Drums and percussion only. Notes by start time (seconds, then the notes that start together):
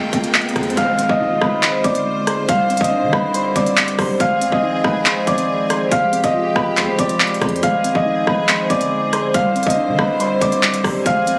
0.13 kick, closed hi-hat
0.24 closed hi-hat
0.34 clap, closed hi-hat
0.42 closed hi-hat
0.49 closed hi-hat
0.56 kick, cross-stick, closed hi-hat
0.63 closed hi-hat
0.70 closed hi-hat
0.77 kick, closed hi-hat
0.99 closed hi-hat
1.09 kick
1.41 kick, cross-stick
1.63 clap, closed hi-hat
1.84 kick, closed hi-hat
1.95 closed hi-hat
2.27 cross-stick, closed hi-hat
2.49 kick, closed hi-hat
2.70 closed hi-hat
2.77 kick, closed hi-hat
2.84 closed hi-hat
3.13 kick, cross-stick
3.34 closed hi-hat
3.56 kick, closed hi-hat
3.66 closed hi-hat
3.77 clap, closed hi-hat
3.88 closed hi-hat
3.99 kick, cross-stick, open hi-hat
4.20 kick, closed hi-hat
4.41 closed hi-hat
4.52 kick
4.84 kick, cross-stick
5.06 clap, closed hi-hat
5.27 kick, closed hi-hat
5.38 closed hi-hat
5.70 cross-stick, closed hi-hat
5.92 kick, closed hi-hat
6.13 closed hi-hat
6.24 kick, closed hi-hat
6.56 kick, cross-stick
6.77 clap, closed hi-hat
6.99 kick, closed hi-hat
7.09 closed hi-hat
7.20 clap, closed hi-hat
7.27 closed hi-hat
7.34 closed hi-hat
7.42 kick, cross-stick, closed hi-hat
7.49 closed hi-hat
7.56 closed hi-hat
7.63 kick, closed hi-hat
7.84 closed hi-hat
7.95 kick
8.27 kick, cross-stick
8.49 clap, closed hi-hat
8.70 kick, closed hi-hat
8.81 closed hi-hat
9.13 cross-stick, closed hi-hat
9.34 kick, closed hi-hat
9.56 closed hi-hat
9.63 kick, closed hi-hat
9.70 closed hi-hat
9.99 kick, cross-stick
10.20 closed hi-hat
10.41 kick, closed hi-hat
10.52 closed hi-hat
10.63 clap, closed hi-hat
10.74 closed hi-hat
10.84 kick, cross-stick, open hi-hat
11.06 kick, closed hi-hat
11.27 closed hi-hat